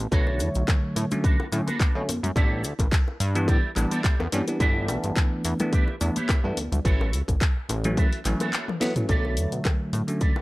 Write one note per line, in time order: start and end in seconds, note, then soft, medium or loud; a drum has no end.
0.11 0.42 B1 loud
0.11 1.07 D3 loud
0.11 1.08 F#3 medium
0.11 1.08 A3 medium
0.11 0.47 D4 loud
0.11 0.47 F#4 medium
0.11 0.48 A4 loud
0.11 0.48 B4 medium
0.11 1.08 C#5 loud
0.11 kick loud
0.11 closed hi-hat medium
0.11 cabasa soft
0.27 high bongo medium
0.40 0.49 E2 medium
0.40 open hi-hat loud
0.40 cabasa loud
0.55 0.63 B1 medium
0.55 closed hi-hat medium
0.55 cabasa medium
0.68 kick loud
0.68 clap loud
0.68 closed hi-hat medium
0.68 high bongo medium
0.68 cabasa soft
0.83 muted clean electric guitar stroke soft
0.96 1.05 A2 loud
0.96 open hi-hat loud
0.96 high bongo soft
0.96 cabasa medium
1.10 1.34 D3 medium
1.10 1.34 F#3 medium
1.10 1.34 A3 medium
1.10 1.35 C#4 loud
1.10 muted clean electric guitar stroke medium
1.10 closed hi-hat medium
1.10 low conga medium
1.10 cabasa medium
1.23 1.45 D4 medium
1.23 1.45 F#4 medium
1.23 1.46 A4 medium
1.23 1.46 B4 medium
1.23 kick loud
1.23 closed hi-hat medium
1.23 cabasa soft
1.40 high bongo medium
1.52 1.61 A2 loud
1.52 1.68 D3 medium
1.52 1.68 F#3 medium
1.52 1.68 A3 medium
1.52 1.68 C#4 medium
1.52 open hi-hat loud
1.52 cabasa loud
1.66 1.95 D4 medium
1.66 1.95 F#4 medium
1.66 1.95 A4 medium
1.66 1.95 B4 medium
1.66 closed hi-hat medium
1.66 high bongo medium
1.66 high conga medium
1.66 cabasa medium
1.80 kick loud
1.80 clap loud
1.80 closed hi-hat medium
1.80 cabasa soft
1.95 2.03 B2 medium
1.95 2.09 D3 medium
1.95 2.09 F#3 medium
1.95 2.09 A3 medium
1.95 2.09 C#4 loud
2.08 2.20 F#2 soft
2.08 open hi-hat loud
2.08 high bongo medium
2.08 high conga medium
2.08 cabasa loud
2.23 2.31 F#2 medium
2.23 muted clean electric guitar stroke soft
2.23 closed hi-hat medium
2.23 low conga medium
2.23 cabasa medium
2.35 2.66 A1 loud
2.35 2.60 E3 medium
2.35 2.60 G3 medium
2.35 2.60 B3 medium
2.35 2.60 D4 loud
2.35 2.71 E4 loud
2.35 2.72 G4 medium
2.35 2.72 A4 loud
2.35 2.72 D5 loud
2.35 kick loud
2.35 closed hi-hat medium
2.35 high bongo medium
2.35 cabasa soft
2.64 2.73 D2 medium
2.64 open hi-hat loud
2.64 cabasa medium
2.79 2.87 A1 medium
2.79 kick medium
2.79 closed hi-hat medium
2.79 high bongo medium
2.79 cabasa medium
2.92 kick loud
2.92 clap loud
2.92 closed hi-hat medium
2.92 cabasa soft
3.07 muted clean electric guitar stroke soft
3.07 high bongo soft
3.20 3.50 G2 loud
3.20 open hi-hat loud
3.20 cabasa medium
3.34 3.58 E3 loud
3.34 3.58 G3 medium
3.34 3.59 B3 medium
3.34 3.59 D4 loud
3.34 muted clean electric guitar stroke medium
3.34 closed hi-hat medium
3.34 cabasa medium
3.47 3.58 A2 medium
3.47 3.70 E4 medium
3.47 3.70 G4 medium
3.47 3.70 A4 medium
3.47 3.70 D5 medium
3.47 kick loud
3.47 closed hi-hat medium
3.47 high bongo medium
3.47 cabasa soft
3.76 3.86 A1 medium
3.76 4.00 E3 medium
3.76 4.00 G3 medium
3.76 4.00 B3 medium
3.76 4.00 D4 loud
3.76 clap soft
3.76 open hi-hat loud
3.76 high bongo medium
3.76 cabasa loud
3.91 4.19 E4 medium
3.91 4.19 G4 medium
3.91 4.19 A4 medium
3.91 4.19 D5 medium
3.91 closed hi-hat medium
3.91 high conga medium
3.91 cabasa medium
4.04 kick loud
4.04 clap loud
4.04 closed hi-hat medium
4.04 cabasa soft
4.19 4.27 E2 loud
4.19 high bongo medium
4.32 4.42 G2 loud
4.32 4.44 E3 loud
4.32 4.44 G3 medium
4.32 4.44 B3 medium
4.32 4.45 C#4 loud
4.32 open hi-hat loud
4.32 high conga medium
4.32 cabasa loud
4.47 4.57 E3 medium
4.47 4.58 G3 medium
4.47 4.58 B3 medium
4.47 4.58 D4 medium
4.47 muted clean electric guitar stroke soft
4.47 closed hi-hat medium
4.47 high bongo soft
4.47 cabasa medium
4.60 4.90 G1 loud
4.60 5.56 E3 loud
4.60 5.56 A3 medium
4.60 5.56 B3 medium
4.60 5.57 D4 loud
4.60 4.96 E4 loud
4.60 4.96 G4 loud
4.60 4.96 B4 medium
4.60 4.96 D5 loud
4.60 kick loud
4.60 closed hi-hat medium
4.60 cabasa soft
4.88 4.98 B1 medium
4.88 open hi-hat loud
4.88 high bongo medium
4.88 cabasa medium
5.04 5.12 G1 medium
5.04 closed hi-hat medium
5.04 cabasa medium
5.16 kick loud
5.16 clap loud
5.16 closed hi-hat medium
5.16 high bongo medium
5.16 cabasa soft
5.32 muted clean electric guitar stroke soft
5.45 5.54 E2 loud
5.45 open hi-hat loud
5.45 cabasa loud
5.59 5.83 E3 medium
5.59 5.83 A3 medium
5.59 5.83 B3 medium
5.59 5.83 D4 loud
5.59 muted clean electric guitar stroke medium
5.59 closed hi-hat medium
5.59 high bongo medium
5.59 low conga medium
5.59 cabasa medium
5.72 5.94 E4 medium
5.72 5.94 G4 medium
5.72 5.94 B4 medium
5.72 5.95 D5 medium
5.72 kick loud
5.72 closed hi-hat medium
5.72 cabasa soft
5.88 high bongo medium
6.00 6.10 E2 loud
6.00 6.16 E3 medium
6.00 6.16 A3 medium
6.00 6.17 B3 medium
6.00 6.17 D4 medium
6.00 open hi-hat loud
6.00 cabasa loud
6.16 6.44 E4 medium
6.16 6.44 G4 medium
6.16 6.44 B4 medium
6.16 6.44 C#5 medium
6.16 closed hi-hat medium
6.16 high conga medium
6.16 cabasa medium
6.29 kick loud
6.29 clap loud
6.29 closed hi-hat medium
6.29 high bongo medium
6.29 cabasa soft
6.44 6.52 G2 medium
6.44 6.58 E3 medium
6.44 6.58 A3 medium
6.44 6.58 B3 medium
6.44 6.58 D4 loud
6.57 6.69 D2 soft
6.57 open hi-hat loud
6.57 high bongo medium
6.57 high conga medium
6.57 cabasa loud
6.72 6.80 D2 medium
6.72 muted clean electric guitar stroke soft
6.72 closed hi-hat medium
6.72 low conga medium
6.72 cabasa medium
6.85 7.15 A1 loud
6.85 7.09 E3 medium
6.85 7.09 F#3 medium
6.85 7.09 A3 medium
6.85 7.09 C#4 loud
6.85 7.20 E4 loud
6.85 7.20 F#4 loud
6.85 7.21 A4 loud
6.85 7.21 C#5 loud
6.85 kick loud
6.85 closed hi-hat medium
6.85 cabasa soft
7.01 high bongo medium
7.13 7.22 C#2 medium
7.13 open hi-hat loud
7.13 cabasa loud
7.28 7.36 A1 medium
7.28 kick medium
7.28 closed hi-hat medium
7.28 high bongo medium
7.28 cabasa medium
7.41 kick loud
7.41 clap loud
7.41 closed hi-hat medium
7.41 cabasa soft
7.56 muted clean electric guitar stroke soft
7.69 7.99 A1 loud
7.69 open hi-hat loud
7.69 high bongo medium
7.69 cabasa medium
7.84 8.07 E3 loud
7.84 8.07 F#3 loud
7.84 8.07 A3 loud
7.84 8.08 C#4 loud
7.84 muted clean electric guitar stroke medium
7.84 closed hi-hat medium
7.84 low conga medium
7.84 cabasa medium
7.97 8.06 A2 medium
7.97 8.18 E4 medium
7.97 8.19 F#4 medium
7.97 8.19 A4 medium
7.97 8.19 E5 medium
7.97 kick loud
7.97 closed hi-hat medium
7.97 high bongo medium
7.97 cabasa soft
8.13 open hi-hat medium
8.25 8.34 A1 medium
8.25 8.49 E3 medium
8.25 8.49 F#3 medium
8.25 8.49 A3 medium
8.25 8.49 C#4 loud
8.25 clap soft
8.25 open hi-hat loud
8.25 cabasa loud
8.40 8.68 E4 medium
8.40 8.68 F#4 medium
8.40 8.68 A4 medium
8.40 8.68 C#5 medium
8.40 closed hi-hat medium
8.40 high bongo medium
8.40 high conga medium
8.40 cabasa medium
8.53 clap loud
8.53 closed hi-hat medium
8.53 cabasa soft
8.68 high tom medium
8.68 high bongo medium
8.80 8.92 E3 loud
8.80 8.92 F#3 loud
8.80 8.93 A3 medium
8.80 8.93 B3 loud
8.80 snare medium
8.80 open hi-hat loud
8.80 high conga medium
8.80 cabasa medium
8.96 9.06 E3 medium
8.96 9.06 F#3 medium
8.96 9.06 A3 medium
8.96 9.06 C#4 medium
8.96 muted clean electric guitar stroke soft
8.96 closed hi-hat medium
8.96 mid tom medium
8.96 cabasa medium
9.08 9.39 B1 loud
9.08 10.04 D3 medium
9.08 10.05 F#3 medium
9.08 10.05 A3 medium
9.08 9.52 A4 loud
9.08 9.52 B4 medium
9.08 9.53 D5 loud
9.08 kick loud
9.08 closed hi-hat medium
9.08 cabasa soft
9.25 high bongo medium
9.37 9.47 E2 medium
9.37 open hi-hat loud
9.37 cabasa medium
9.52 9.60 B1 medium
9.52 closed hi-hat medium
9.52 cabasa soft
9.65 kick loud
9.65 clap loud
9.65 closed hi-hat medium
9.65 high bongo medium
9.65 cabasa soft
9.93 10.02 A2 loud
9.93 muted clean electric guitar stroke soft
9.93 open hi-hat loud
9.93 high bongo medium
9.93 cabasa medium
10.07 10.31 D3 medium
10.07 10.31 F#3 medium
10.07 10.31 A3 medium
10.07 10.31 C#4 medium
10.07 closed hi-hat medium
10.07 cabasa medium
10.20 10.42 A4 medium
10.20 10.42 B4 medium
10.20 10.42 D5 medium
10.20 kick loud
10.20 closed hi-hat medium
10.20 cabasa soft
10.36 high bongo medium